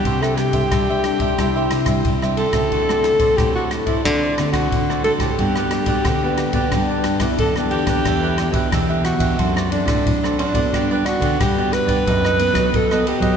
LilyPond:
<<
  \new Staff \with { instrumentName = "Cavaquinho" } { \time 4/4 \key g \major \tempo 4 = 90 <d' g' c'' e''>16 <g' c'' e''>16 r16 <g' c'' e''>16 <d' g' c'' e''>16 <g' c'' e''>16 r16 <g' c'' e''>16 <d' g' c'' e''>16 <g' c'' e''>8 <g' c'' e''>8 <g' c'' e''>16 <d' g' c'' e''>16 <g' c'' e''>16 | <fis' a' c'' d''>16 <a' c'' d''>16 r16 <a' c'' d''>16 <fis' a' c'' d''>16 <a' c'' d''>16 r16 <a' c'' d''>16 <fis' a' c'' d''>16 <a' c'' d''>8 <a' c'' d''>8 <a' c'' d''>16 <fis' a' c'' d''>16 <a' c'' d''>16 | <fis' g' b' d''>16 <g' b' d''>16 r16 <g' b' d''>16 <fis' g' b' d''>16 <g' b' d''>16 r16 <g' b' d''>16 <fis' g' b' d''>16 <g' b' d''>8 <g' b' d''>8 <g' b' d''>16 <fis' g' b' d''>16 <g' b' d''>16 | <d' g' b' e''>16 <g' b' e''>16 r16 <g' b' e''>16 <d' g' b' e''>16 <g' b' e''>16 r16 <g' b' e''>16 <fis' a' c'' d''>16 <a' c'' d''>8 <a' c'' d''>8 <a' c'' d''>16 <fis' a' c'' d''>16 <a' c'' d''>16 |
<fis' g' b' d''>16 <g' b' d''>16 r16 <g' b' d''>16 <fis' g' b' d''>16 <g' b' d''>16 r16 <g' b' d''>16 <dis' a' b' dis''>16 <a' b' dis''>8 <a' b' dis''>8 <a' b' dis''>16 <dis' a' b' dis''>16 <a' b' dis''>16 | }
  \new Staff \with { instrumentName = "Alto saxophone" } { \time 4/4 \key g \major g'16 a'16 g'2~ g'8 r8 a'8~ | a'4 g'16 fis'8 e'16 d'8. fis'8. a'16 g'16~ | g'2. a'8 g'8~ | g'4 r8 fis'4 d'4 d'8~ |
d'8 fis'8 g'8 b'4. a'8 g'8 | }
  \new Staff \with { instrumentName = "Trombone" } { \time 4/4 \key g \major r4. d'8 e'4~ e'16 r8. | r1 | r4 c'16 b8. d'8. e'16 d'4 | r1 |
r1 | }
  \new Staff \with { instrumentName = "Nylon-string guitar" } { \time 4/4 \key g \major << { <g d' e'>8. <g d' e'>8 <g d' e'>8 <g d' e'>16 <g d' e'>8. <g d' e'>8 <g d' e'>8 <a c' fis'>16~ | <a c' fis'>16 <a c' fis'>8. <a c' fis'>4 <a c' fis'>8 <a c' fis'>4 <a c' fis'>16 r16 | <b d'>8. <b d' fis'>8 <b d' fis'>8 <b d' fis'>16 <b d'>8 r16 <b d' fis'>8 <b d' fis'>8 <b d' g'>16~ | <b d' g'>8 <b d' g'>8 r16 <b d' g'>8. <c' d' a'>16 r16 <c' d' a'>8. <c' d' a'>8 <b d' fis'>16~ |
<b d' fis'>8 <b d' fis'>8 r16 <b d' fis'>8. <b dis' a'>16 r16 <b dis' a'>8. <b dis' a'>8. | } \\ { c4 g4 c4 g4 | d4 a,4 d4 a,4 | g4 d4 g4 d4 | e4 b,4 fis4 fis4 |
g4 d4 fis4 r4 | } >> }
  \new Staff \with { instrumentName = "Nylon-string guitar" } { \clef bass \time 4/4 \key g \major c4 g4 c8 c8 c8. cis16 | d4 a,4 d8 d8 d8. a,16 | g,4 d4 g,8 g,8 fis,8 e,8 | e,8. b,16 e,8. e,16 fis,8. a,16 a,8 r16 a,16 |
g,8. d16 g,8. g,16 fis,8. fis16 fis8 r16 fis16 | }
  \new DrumStaff \with { instrumentName = "Drums" } \drummode { \time 4/4 <bd cymr>16 ss16 <cymr ss>16 <bd cymr>16 <bd cymr ss>8 <cymr ss>16 <bd cymr>16 <bd cymr ss>8 <cymr ss>16 <bd cymr ss>16 <bd cymr>16 ss16 cymr16 <bd cymr ss>16 | <bd cymr>16 ss16 <cymr ss>16 <bd cymr>16 <bd cymr ss>8 <cymr ss>16 <bd cymr>16 <bd cymr ss>8 <cymr ss>16 <bd cymr ss>16 <bd cymr>16 ss16 cymr16 <bd cymr ss>16 | <bd cymr>16 ss16 <cymr ss>16 <bd cymr>16 <bd cymr ss>8 <cymr ss>16 <bd cymr>16 <bd cymr ss>8 <cymr ss>16 <bd cymr ss>16 <bd cymr>16 ss16 cymr16 <bd cymr ss>16 | <cymc bd ss>8 <cymr ss>16 <bd cymr>16 <bd cymr ss>8 <cymr ss>16 <bd cymr>16 <bd cymr>16 ss16 cymr16 <bd cymr ss>16 <bd cymr>16 ss16 cymr16 <bd cymr>16 |
<bd cymr ss>8 <cymr ss>16 <bd cymr>16 <bd cymr ss>8 <cymr ss>16 <bd cymr>16 <bd cymr>16 ss16 cymr16 <bd cymr ss>16 <bd cymr>16 ss16 cymr16 <bd cymr>16 | }
>>